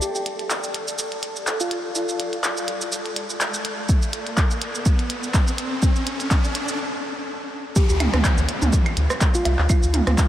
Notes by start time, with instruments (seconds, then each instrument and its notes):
Already playing: ambient pad A4 D5 A5
0.02 soft synth lead G4, riser, cabasa
0.15 soft synth lead G4, cabasa
0.26 closed hi-hat
0.39 closed hi-hat
0.50 clap, cabasa
0.64 cabasa
0.74 closed hi-hat
0.88 cabasa
0.99 cabasa
1.12 closed hi-hat
1.23 closed hi-hat
1.36 cabasa
1.47 clap, cabasa
1.60 soft synth lead F4, cabasa
1.71 closed hi-hat
1.95 soft synth lead F4, cabasa
2.09 cabasa
2.20 closed hi-hat
2.33 closed hi-hat
2.44 clap, cabasa
2.57 cabasa
2.68 closed hi-hat
2.81 cabasa
2.92 cabasa
3.06 closed hi-hat
3.16 closed hi-hat
3.30 cabasa
3.41 clap, cabasa
3.54 cabasa
3.65 closed hi-hat
3.89 kick, cabasa
4.02 cabasa
4.13 closed hi-hat
4.27 closed hi-hat
4.37 kick, clap, cabasa
4.51 cabasa
4.62 closed hi-hat
4.75 cabasa
4.86 kick, cabasa
4.99 closed hi-hat
5.10 closed hi-hat
5.23 cabasa
5.34 kick, clap, cabasa
5.47 cabasa
5.58 closed hi-hat
5.82 kick, cabasa
5.96 cabasa
6.07 closed hi-hat
6.20 closed hi-hat, cabasa
6.31 kick, clap, cabasa
6.44 cabasa
6.55 closed hi-hat
6.68 cabasa
7.76 soft synth lead G4, kick, downlifter, cabasa
7.89 analog synth bass D2, soft synth lead G4, cabasa
8.00 closed hi-hat, mid tom, claves, low woodblock
8.14 analog synth bass D2, cross-stick, closed hi-hat, mid tom
8.24 kick, clap, cabasa
8.38 analog synth bass D2, cabasa
8.49 closed hi-hat
8.62 analog synth bass D2, mid tom, cabasa
8.73 kick, cabasa
8.86 closed hi-hat, claves
8.97 analog synth bass D2, closed hi-hat
9.10 cross-stick, cabasa
9.21 kick, clap, cabasa
9.35 soft synth lead F4, cabasa
9.45 analog synth bass C2, closed hi-hat, low woodblock
9.59 analog synth bass D2, clap
9.69 soft synth lead F4, kick, cabasa, claves
9.83 analog synth bass D2, cabasa
9.94 closed hi-hat, mid tom
10.07 analog synth bass D2, cross-stick, closed hi-hat, mid tom
10.18 kick, clap, cabasa